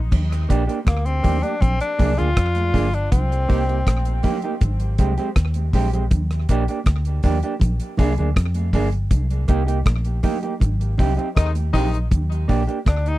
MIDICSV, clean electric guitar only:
0, 0, Header, 1, 2, 480
1, 0, Start_track
1, 0, Key_signature, -3, "major"
1, 0, Tempo, 750000
1, 74, Time_signature, 4, 2, 24, 8
1, 8438, End_track
2, 0, Start_track
2, 0, Title_t, "Clean electric guitar"
2, 0, Program_c, 0, 27
2, 313, Note_on_c, 0, 58, 87
2, 319, Note_on_c, 0, 62, 91
2, 322, Note_on_c, 0, 67, 92
2, 398, Note_off_c, 0, 58, 0
2, 402, Note_off_c, 0, 62, 0
2, 403, Note_off_c, 0, 67, 0
2, 431, Note_on_c, 0, 67, 58
2, 434, Note_on_c, 0, 62, 54
2, 439, Note_on_c, 0, 58, 53
2, 498, Note_off_c, 0, 67, 0
2, 500, Note_off_c, 0, 62, 0
2, 502, Note_off_c, 0, 58, 0
2, 787, Note_on_c, 0, 58, 77
2, 791, Note_on_c, 0, 62, 78
2, 795, Note_on_c, 0, 67, 77
2, 875, Note_off_c, 0, 58, 0
2, 878, Note_off_c, 0, 62, 0
2, 880, Note_off_c, 0, 67, 0
2, 914, Note_on_c, 0, 67, 56
2, 921, Note_on_c, 0, 62, 51
2, 923, Note_on_c, 0, 58, 45
2, 979, Note_off_c, 0, 67, 0
2, 983, Note_off_c, 0, 62, 0
2, 984, Note_off_c, 0, 58, 0
2, 1270, Note_on_c, 0, 58, 82
2, 1276, Note_on_c, 0, 62, 79
2, 1280, Note_on_c, 0, 68, 90
2, 1357, Note_off_c, 0, 58, 0
2, 1360, Note_off_c, 0, 62, 0
2, 1362, Note_off_c, 0, 68, 0
2, 1391, Note_on_c, 0, 68, 64
2, 1398, Note_on_c, 0, 62, 57
2, 1402, Note_on_c, 0, 58, 45
2, 1458, Note_off_c, 0, 68, 0
2, 1462, Note_off_c, 0, 62, 0
2, 1464, Note_off_c, 0, 58, 0
2, 1748, Note_on_c, 0, 58, 68
2, 1751, Note_on_c, 0, 62, 79
2, 1755, Note_on_c, 0, 68, 84
2, 1836, Note_off_c, 0, 58, 0
2, 1838, Note_off_c, 0, 62, 0
2, 1840, Note_off_c, 0, 68, 0
2, 2229, Note_on_c, 0, 58, 92
2, 2232, Note_on_c, 0, 63, 93
2, 2237, Note_on_c, 0, 67, 98
2, 2317, Note_off_c, 0, 58, 0
2, 2318, Note_off_c, 0, 63, 0
2, 2321, Note_off_c, 0, 67, 0
2, 2352, Note_on_c, 0, 67, 52
2, 2358, Note_on_c, 0, 63, 51
2, 2361, Note_on_c, 0, 58, 49
2, 2419, Note_off_c, 0, 67, 0
2, 2422, Note_off_c, 0, 63, 0
2, 2423, Note_off_c, 0, 58, 0
2, 2708, Note_on_c, 0, 58, 80
2, 2711, Note_on_c, 0, 63, 75
2, 2718, Note_on_c, 0, 67, 85
2, 2796, Note_off_c, 0, 58, 0
2, 2797, Note_off_c, 0, 63, 0
2, 2801, Note_off_c, 0, 67, 0
2, 2839, Note_on_c, 0, 67, 60
2, 2844, Note_on_c, 0, 63, 57
2, 2847, Note_on_c, 0, 58, 53
2, 2902, Note_off_c, 0, 67, 0
2, 2904, Note_off_c, 0, 63, 0
2, 2906, Note_off_c, 0, 58, 0
2, 3191, Note_on_c, 0, 56, 78
2, 3197, Note_on_c, 0, 60, 73
2, 3200, Note_on_c, 0, 67, 75
2, 3278, Note_off_c, 0, 56, 0
2, 3280, Note_off_c, 0, 60, 0
2, 3282, Note_off_c, 0, 67, 0
2, 3313, Note_on_c, 0, 67, 71
2, 3321, Note_on_c, 0, 60, 67
2, 3326, Note_on_c, 0, 56, 57
2, 3379, Note_off_c, 0, 67, 0
2, 3383, Note_off_c, 0, 60, 0
2, 3385, Note_off_c, 0, 56, 0
2, 3674, Note_on_c, 0, 56, 83
2, 3678, Note_on_c, 0, 60, 83
2, 3681, Note_on_c, 0, 67, 95
2, 3759, Note_off_c, 0, 56, 0
2, 3761, Note_off_c, 0, 60, 0
2, 3763, Note_off_c, 0, 67, 0
2, 3797, Note_on_c, 0, 67, 52
2, 3804, Note_on_c, 0, 60, 51
2, 3806, Note_on_c, 0, 56, 50
2, 3861, Note_off_c, 0, 67, 0
2, 3865, Note_off_c, 0, 60, 0
2, 3866, Note_off_c, 0, 56, 0
2, 4159, Note_on_c, 0, 58, 88
2, 4163, Note_on_c, 0, 62, 86
2, 4167, Note_on_c, 0, 67, 95
2, 4241, Note_off_c, 0, 58, 0
2, 4244, Note_off_c, 0, 62, 0
2, 4245, Note_off_c, 0, 67, 0
2, 4280, Note_on_c, 0, 67, 65
2, 4282, Note_on_c, 0, 62, 57
2, 4289, Note_on_c, 0, 58, 45
2, 4343, Note_off_c, 0, 67, 0
2, 4344, Note_off_c, 0, 62, 0
2, 4347, Note_off_c, 0, 58, 0
2, 4632, Note_on_c, 0, 58, 82
2, 4633, Note_on_c, 0, 62, 85
2, 4639, Note_on_c, 0, 67, 83
2, 4718, Note_off_c, 0, 58, 0
2, 4719, Note_off_c, 0, 62, 0
2, 4722, Note_off_c, 0, 67, 0
2, 4758, Note_on_c, 0, 67, 63
2, 4761, Note_on_c, 0, 62, 61
2, 4765, Note_on_c, 0, 58, 50
2, 4821, Note_off_c, 0, 67, 0
2, 4823, Note_off_c, 0, 62, 0
2, 4825, Note_off_c, 0, 58, 0
2, 5108, Note_on_c, 0, 58, 92
2, 5112, Note_on_c, 0, 62, 81
2, 5117, Note_on_c, 0, 68, 108
2, 5196, Note_off_c, 0, 58, 0
2, 5198, Note_off_c, 0, 62, 0
2, 5200, Note_off_c, 0, 68, 0
2, 5239, Note_on_c, 0, 68, 69
2, 5243, Note_on_c, 0, 62, 56
2, 5246, Note_on_c, 0, 58, 48
2, 5302, Note_off_c, 0, 68, 0
2, 5304, Note_off_c, 0, 62, 0
2, 5305, Note_off_c, 0, 58, 0
2, 5592, Note_on_c, 0, 58, 78
2, 5596, Note_on_c, 0, 62, 81
2, 5599, Note_on_c, 0, 68, 94
2, 5678, Note_off_c, 0, 58, 0
2, 5680, Note_off_c, 0, 62, 0
2, 5682, Note_off_c, 0, 68, 0
2, 6067, Note_on_c, 0, 58, 89
2, 6074, Note_on_c, 0, 63, 87
2, 6075, Note_on_c, 0, 67, 86
2, 6155, Note_off_c, 0, 58, 0
2, 6159, Note_off_c, 0, 63, 0
2, 6159, Note_off_c, 0, 67, 0
2, 6187, Note_on_c, 0, 67, 68
2, 6194, Note_on_c, 0, 63, 60
2, 6196, Note_on_c, 0, 58, 52
2, 6256, Note_off_c, 0, 67, 0
2, 6259, Note_off_c, 0, 63, 0
2, 6260, Note_off_c, 0, 58, 0
2, 6548, Note_on_c, 0, 58, 69
2, 6553, Note_on_c, 0, 63, 89
2, 6553, Note_on_c, 0, 67, 81
2, 6636, Note_off_c, 0, 58, 0
2, 6638, Note_off_c, 0, 63, 0
2, 6639, Note_off_c, 0, 67, 0
2, 6673, Note_on_c, 0, 67, 53
2, 6677, Note_on_c, 0, 63, 50
2, 6681, Note_on_c, 0, 58, 47
2, 6739, Note_off_c, 0, 67, 0
2, 6741, Note_off_c, 0, 63, 0
2, 6743, Note_off_c, 0, 58, 0
2, 7030, Note_on_c, 0, 60, 73
2, 7037, Note_on_c, 0, 63, 81
2, 7040, Note_on_c, 0, 67, 91
2, 7117, Note_off_c, 0, 60, 0
2, 7120, Note_off_c, 0, 63, 0
2, 7122, Note_off_c, 0, 67, 0
2, 7150, Note_on_c, 0, 63, 50
2, 7157, Note_on_c, 0, 60, 50
2, 7217, Note_off_c, 0, 63, 0
2, 7221, Note_off_c, 0, 60, 0
2, 7511, Note_on_c, 0, 60, 76
2, 7513, Note_on_c, 0, 63, 78
2, 7520, Note_on_c, 0, 67, 91
2, 7597, Note_off_c, 0, 60, 0
2, 7598, Note_off_c, 0, 63, 0
2, 7602, Note_off_c, 0, 67, 0
2, 7987, Note_on_c, 0, 58, 91
2, 7990, Note_on_c, 0, 62, 83
2, 7995, Note_on_c, 0, 67, 83
2, 8075, Note_off_c, 0, 58, 0
2, 8077, Note_off_c, 0, 62, 0
2, 8080, Note_off_c, 0, 67, 0
2, 8111, Note_on_c, 0, 67, 60
2, 8112, Note_on_c, 0, 62, 51
2, 8118, Note_on_c, 0, 58, 50
2, 8178, Note_off_c, 0, 67, 0
2, 8179, Note_off_c, 0, 62, 0
2, 8181, Note_off_c, 0, 58, 0
2, 8438, End_track
0, 0, End_of_file